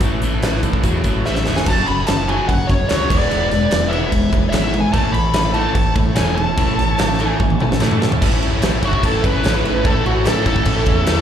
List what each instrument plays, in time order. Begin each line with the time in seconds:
0.01 fingered electric bass A1, steel-string acoustic guitar A2 E3 A3 C#4 A4, kick, closed hi-hat
0.05 steel-string acoustic guitar E4
0.22 fingered electric bass A1, overdriven electric guitar A2 E3, steel-string acoustic guitar A3 C#4 E4, closed hi-hat
0.26 steel-string acoustic guitar A4
0.34 steel-string acoustic guitar A3 C#4 E4 A4
0.43 fingered electric bass A1, steel-string acoustic guitar A2 E3 A3 C#4 E4 A4, snare, closed hi-hat
0.62 fingered electric bass A1, overdriven electric guitar A2 E3, steel-string acoustic guitar A3 C#4 E4 A4, kick, closed hi-hat
0.73 kick
0.83 fingered electric bass E2, overdriven electric guitar A2 F#3, steel-string acoustic guitar A3 C#4 E4 A4, kick, closed hi-hat
0.94 steel-string acoustic guitar A3 C#4 E4 A4
1.04 fingered electric bass A1, overdriven electric guitar A2 F#3, steel-string acoustic guitar A3 C#4 E4 A4, kick, closed hi-hat
1.15 steel-string acoustic guitar A3 C#4 E4 A4
1.24 fingered electric bass A1, steel-string acoustic guitar A2 E3 A3 C#4 E4 A4, overdriven electric guitar G3, lead electric guitar E5, snare
1.35 snare
1.46 fingered electric bass E1, overdriven electric guitar A2 E3, steel-string acoustic guitar A3 C#4 E4 A4, snare
1.56 steel-string acoustic guitar C#4 E4 A4, lead electric guitar G#5, snare
1.61 steel-string acoustic guitar A3
1.66 fingered electric bass F#1, steel-string acoustic guitar F#2 C#3 F#3 A3, tonewheel organ C#4 F#4 A4 C#5, lead electric guitar A5, kick, crash
1.71 steel-string acoustic guitar C#4 A4
1.77 steel-string acoustic guitar F#3 A3 C#4 A4
1.87 fingered electric bass F#1, overdriven electric guitar F#2 C#3, lead electric guitar B5, crash
1.98 steel-string acoustic guitar F#3 A3 C#4 A4
2.07 fingered electric bass F#1, steel-string acoustic guitar F#2 C#3 F#3 A3, lead electric guitar A5, snare, clap, crash
2.11 steel-string acoustic guitar C#4 A4
2.28 overdriven electric guitar F#2 C#3, steel-string acoustic guitar F#3 A3 C#4, lead electric guitar G#5, crash
2.32 steel-string acoustic guitar A4
2.48 fingered electric bass F#1, overdriven electric guitar F#2 C#3, lead electric guitar F#5, kick, crash
2.67 fingered electric bass F#2, overdriven electric guitar F#2 C#3, steel-string acoustic guitar F#3 A3 C#4, lead electric guitar C#5, kick, crash
2.72 steel-string acoustic guitar A4
2.89 fingered electric bass C#2, steel-string acoustic guitar F#2 C#3 F#3 A3 C#4 A4, lead electric guitar C#5, snare, clap, crash
3.01 steel-string acoustic guitar F#3 A3 C#4 A4
3.10 fingered electric bass E1, steel-string acoustic guitar E3 B3 E4 G#4, overdriven electric guitar G#3, tonewheel organ B3 E4 G#4 B4, kick, crash
3.18 steel-string acoustic guitar B3 E4 G#4, lead electric guitar D5
3.30 fingered electric bass E1, steel-string acoustic guitar E3 B3 E4 G#4, overdriven electric guitar G#3, crash
3.40 steel-string acoustic guitar B3 E4 G#4
3.49 fingered electric bass E1, overdriven electric guitar E3 G#3, lead electric guitar D5, snare, crash
3.61 steel-string acoustic guitar B3 E4 G#4
3.72 fingered electric bass E1, steel-string acoustic guitar E3 B3 E4 G#4, overdriven electric guitar G#3, snare, clap, crash
3.89 steel-string acoustic guitar E3, overdriven electric guitar G#3, lead electric guitar E5
3.93 steel-string acoustic guitar B3 E4 G#4, crash
4.10 fingered electric bass E1, overdriven electric guitar E3 G#3, kick, crash
4.32 fingered electric bass E1, steel-string acoustic guitar E3 B3 E4 G#4, overdriven electric guitar G#3, kick, crash
4.50 fingered electric bass G#1, steel-string acoustic guitar E3, overdriven electric guitar G#3, lead electric guitar E5, clap, crash
4.54 steel-string acoustic guitar B3 E4 G#4, snare
4.64 steel-string acoustic guitar B3 E4 G#4
4.74 steel-string acoustic guitar E3 B3 E4 G#4, overdriven electric guitar G#3, crash
4.80 lead electric guitar G#5
4.86 steel-string acoustic guitar B3 E4 G#4
4.93 fingered electric bass A1, steel-string acoustic guitar A2 E3 A3, tonewheel organ C#4 E4 A4 C#5, lead electric guitar A5, kick, crash
4.97 steel-string acoustic guitar C#4 E4 A4
5.04 steel-string acoustic guitar A3 C#4 E4 A4
5.13 fingered electric bass A1, overdriven electric guitar A2 E3, lead electric guitar B5, crash
5.26 steel-string acoustic guitar A3 C#4 E4 A4
5.33 fingered electric bass A1, steel-string acoustic guitar A2 E3 A3 C#4, snare, clap, crash
5.38 steel-string acoustic guitar E4 A4
5.54 overdriven electric guitar A2 E3, steel-string acoustic guitar A3 C#4, lead electric guitar A5, crash
5.58 steel-string acoustic guitar E4 A4
5.75 fingered electric bass A1, overdriven electric guitar A2 E3, kick, crash
5.95 overdriven electric guitar A2 E3, fingered electric bass A2, steel-string acoustic guitar A3 C#4, kick, crash
5.99 steel-string acoustic guitar E4 A4
6.16 fingered electric bass E1, steel-string acoustic guitar A2 E3 A3 C#4 E4, lead electric guitar G#5, snare, clap, crash
6.20 steel-string acoustic guitar A4
6.27 steel-string acoustic guitar A3 C#4 E4 A4
6.36 overdriven electric guitar A2 E3, steel-string acoustic guitar A3 C#4, lead electric guitar A5, crash
6.40 steel-string acoustic guitar E4 A4
6.48 steel-string acoustic guitar A3 C#4 E4 A4
6.58 fingered electric bass A1, steel-string acoustic guitar A2 E3 A3 C#4 E4 A4, kick, crash
6.68 steel-string acoustic guitar C#4 E4 A4
6.72 steel-string acoustic guitar A3
6.78 fingered electric bass A1, overdriven electric guitar A2 E3, snare, crash
6.88 steel-string acoustic guitar A3 C#4 E4 A4
6.97 fingered electric bass A1, steel-string acoustic guitar A2 E3 A3 C#4 E4 A4, snare, clap, crash
7.19 overdriven electric guitar A2 E3, steel-string acoustic guitar A3 C#4 E4 A4, clap, crash
7.27 lead electric guitar G#5
7.40 fingered electric bass A1, overdriven electric guitar A2 E3, kick, high tom
7.50 high tom
7.59 fingered electric bass A1, overdriven electric guitar A2 E3, steel-string acoustic guitar A3 C#4 E4 A4, mid tom
7.72 snare
7.80 steel-string acoustic guitar A2 E3 A3 C#4 E4 A4, fingered electric bass A2, snare, clap
7.90 tonewheel organ A3 B3, steel-string acoustic guitar C#4 E4 A4, mid tom
7.95 steel-string acoustic guitar A3, tonewheel organ C4
7.99 overdriven electric guitar A2 E3, steel-string acoustic guitar A3 C#4 E4 A4, tonewheel organ D4 E4, snare
8.04 tonewheel organ F4 G4
8.10 steel-string acoustic guitar A3 C#4 E4 A4, tonewheel organ A4 B4, floor tom
8.15 tonewheel organ C5 D5
8.20 fingered electric bass A1, steel-string acoustic guitar A2 E3 A3 C#4 E4 A4, tonewheel organ C#4 E4 A4 C#5, kick, crash
8.30 steel-string acoustic guitar A3 C#4 E4 A4
8.42 overdriven electric guitar A3 C#4 E4, crash
8.51 steel-string acoustic guitar A3 C#4 E4 A4
8.63 fingered electric bass A1, steel-string acoustic guitar A2 E3 A3 C#4 E4 A4, snare, clap, crash
8.83 fingered electric bass A1, overdriven electric guitar A2 E3, steel-string acoustic guitar A3 C#4 E4, lead electric guitar F#4, kick, crash
8.87 steel-string acoustic guitar A4
8.93 kick
9.02 fingered electric bass A1, overdriven electric guitar E3 A3 C#4 E4, lead electric guitar A4, kick, clap, crash
9.14 steel-string acoustic guitar A3 C#4 E4 A4
9.23 fingered electric bass A1, steel-string acoustic guitar A3 C#4 E4 A4, lead electric guitar B4, kick, crash
9.33 steel-string acoustic guitar A3 C#4 E4 A4
9.43 fingered electric bass A1, steel-string acoustic guitar A2 E3 A3 C#4 E4 A4, snare, clap, crash
9.53 steel-string acoustic guitar A3 C#4 E4 A4
9.64 fingered electric bass A1, overdriven electric guitar A3 C#4 E4, crash
9.74 steel-string acoustic guitar A3 C#4 E4 A4
9.83 fingered electric bass A1, steel-string acoustic guitar A2 E3 A3 C#4 E4 A4, lead electric guitar A4, kick, crash
9.93 steel-string acoustic guitar A3 C#4 E4 A4
10.05 fingered electric bass A1, overdriven electric guitar A3 C#4 E4, lead electric guitar F#4, crash
10.14 steel-string acoustic guitar A3 C#4 E4 A4
10.23 steel-string acoustic guitar A2 E3 A3 C#4 E4 A4, fingered electric bass A2, snare, clap, crash
10.27 lead electric guitar A4
10.44 fingered electric bass A1, steel-string acoustic guitar A3 C#4 E4 A4, lead electric guitar A4, kick, crash
10.48 overdriven electric guitar A2 E3
10.56 kick
10.65 fingered electric bass A1, overdriven electric guitar E3 A3 C#4 E4, kick, clap, crash
10.75 steel-string acoustic guitar A3 C#4 E4 A4
10.85 fingered electric bass E2, steel-string acoustic guitar A3 C#4 E4 A4, kick, crash
10.90 overdriven electric guitar A3
11.06 fingered electric bass E2, steel-string acoustic guitar A2 E3 A3 C#4 E4 A4, snare, clap, crash
11.15 steel-string acoustic guitar C#4 E4 A4